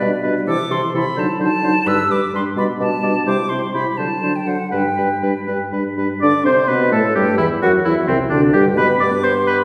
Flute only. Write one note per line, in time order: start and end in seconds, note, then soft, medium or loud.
0.00 0.25 D5 medium
0.48 0.73 D6 loud
0.71 0.95 C6 medium
0.96 1.21 B5 medium
1.19 1.41 A5 medium
1.43 1.89 A5 medium
1.87 2.13 E6 medium
2.11 2.34 D6 medium
2.35 2.41 C6 medium
2.58 2.64 B5 medium
2.80 3.26 A5 medium
3.27 3.51 D6 medium
3.49 3.73 C6 medium
3.74 3.90 B5 medium
3.91 3.99 B5 medium
3.97 4.37 A5 medium
4.36 4.49 G5 medium
4.47 4.72 F#5 medium
4.72 5.46 G5 medium
6.22 6.46 D6 medium
6.44 6.68 C6 medium
6.69 6.75 B5 medium
6.93 6.99 A5 medium
7.16 7.38 G5 medium
7.38 7.44 E5 medium
7.62 7.68 F#5 medium
7.84 8.07 E5 medium
8.08 8.14 C5 medium
8.31 8.55 D5 medium
8.54 8.79 G5 medium
8.77 9.01 B5 medium
9.00 9.25 D6 medium
9.24 9.49 C6 medium
9.47 9.64 B5 medium